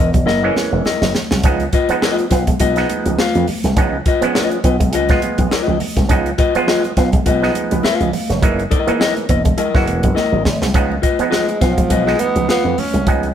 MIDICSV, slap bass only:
0, 0, Header, 1, 3, 480
1, 0, Start_track
1, 0, Tempo, 581959
1, 1183, Time_signature, 4, 2, 24, 8
1, 11004, End_track
2, 0, Start_track
2, 0, Title_t, "Slap bass"
2, 0, Program_c, 0, 36
2, 0, Note_on_c, 0, 28, 87
2, 219, Note_off_c, 0, 28, 0
2, 219, Note_on_c, 0, 30, 87
2, 402, Note_off_c, 0, 30, 0
2, 597, Note_on_c, 0, 28, 81
2, 677, Note_off_c, 0, 28, 0
2, 837, Note_on_c, 0, 30, 84
2, 917, Note_off_c, 0, 30, 0
2, 1081, Note_on_c, 0, 36, 80
2, 1186, Note_off_c, 0, 36, 0
2, 1186, Note_on_c, 0, 37, 98
2, 1367, Note_off_c, 0, 37, 0
2, 1906, Note_on_c, 0, 35, 85
2, 2087, Note_off_c, 0, 35, 0
2, 2147, Note_on_c, 0, 35, 94
2, 2327, Note_off_c, 0, 35, 0
2, 2521, Note_on_c, 0, 37, 85
2, 2600, Note_off_c, 0, 37, 0
2, 2765, Note_on_c, 0, 41, 81
2, 2843, Note_off_c, 0, 41, 0
2, 3000, Note_on_c, 0, 36, 80
2, 3080, Note_off_c, 0, 36, 0
2, 3107, Note_on_c, 0, 37, 100
2, 3288, Note_off_c, 0, 37, 0
2, 3829, Note_on_c, 0, 35, 95
2, 4065, Note_off_c, 0, 35, 0
2, 4065, Note_on_c, 0, 37, 96
2, 4247, Note_off_c, 0, 37, 0
2, 4441, Note_on_c, 0, 35, 93
2, 4520, Note_off_c, 0, 35, 0
2, 4683, Note_on_c, 0, 37, 94
2, 4762, Note_off_c, 0, 37, 0
2, 4920, Note_on_c, 0, 36, 85
2, 5000, Note_off_c, 0, 36, 0
2, 5026, Note_on_c, 0, 37, 84
2, 5208, Note_off_c, 0, 37, 0
2, 5747, Note_on_c, 0, 35, 100
2, 5928, Note_off_c, 0, 35, 0
2, 5987, Note_on_c, 0, 35, 95
2, 6168, Note_off_c, 0, 35, 0
2, 6366, Note_on_c, 0, 37, 83
2, 6444, Note_off_c, 0, 37, 0
2, 6601, Note_on_c, 0, 37, 82
2, 6680, Note_off_c, 0, 37, 0
2, 6843, Note_on_c, 0, 29, 78
2, 6948, Note_off_c, 0, 29, 0
2, 6948, Note_on_c, 0, 30, 94
2, 7129, Note_off_c, 0, 30, 0
2, 7664, Note_on_c, 0, 28, 72
2, 7846, Note_off_c, 0, 28, 0
2, 8040, Note_on_c, 0, 30, 97
2, 8143, Note_off_c, 0, 30, 0
2, 8143, Note_on_c, 0, 28, 88
2, 8245, Note_off_c, 0, 28, 0
2, 8278, Note_on_c, 0, 30, 90
2, 8358, Note_off_c, 0, 30, 0
2, 8514, Note_on_c, 0, 32, 91
2, 8596, Note_off_c, 0, 32, 0
2, 8619, Note_on_c, 0, 32, 85
2, 8723, Note_off_c, 0, 32, 0
2, 8756, Note_on_c, 0, 36, 88
2, 8837, Note_off_c, 0, 36, 0
2, 8860, Note_on_c, 0, 37, 92
2, 9043, Note_off_c, 0, 37, 0
2, 9581, Note_on_c, 0, 35, 85
2, 9764, Note_off_c, 0, 35, 0
2, 9819, Note_on_c, 0, 35, 95
2, 10003, Note_off_c, 0, 35, 0
2, 10192, Note_on_c, 0, 37, 90
2, 10274, Note_off_c, 0, 37, 0
2, 10429, Note_on_c, 0, 41, 75
2, 10513, Note_off_c, 0, 41, 0
2, 10670, Note_on_c, 0, 36, 80
2, 10753, Note_off_c, 0, 36, 0
2, 10778, Note_on_c, 0, 37, 89
2, 10962, Note_off_c, 0, 37, 0
2, 11004, End_track
3, 0, Start_track
3, 0, Title_t, "Muted slap bass strokes"
3, 1558, Note_on_c, 9, 29, 49
3, 1640, Note_off_c, 9, 29, 0
3, 3481, Note_on_c, 9, 29, 46
3, 3564, Note_off_c, 9, 29, 0
3, 4550, Note_on_c, 9, 29, 47
3, 4633, Note_off_c, 9, 29, 0
3, 5403, Note_on_c, 9, 29, 47
3, 5485, Note_off_c, 9, 29, 0
3, 6471, Note_on_c, 9, 29, 49
3, 6554, Note_off_c, 9, 29, 0
3, 7322, Note_on_c, 9, 29, 48
3, 7405, Note_off_c, 9, 29, 0
3, 9233, Note_on_c, 9, 29, 49
3, 9315, Note_off_c, 9, 29, 0
3, 10298, Note_on_c, 9, 29, 49
3, 10380, Note_off_c, 9, 29, 0
3, 11004, End_track
0, 0, End_of_file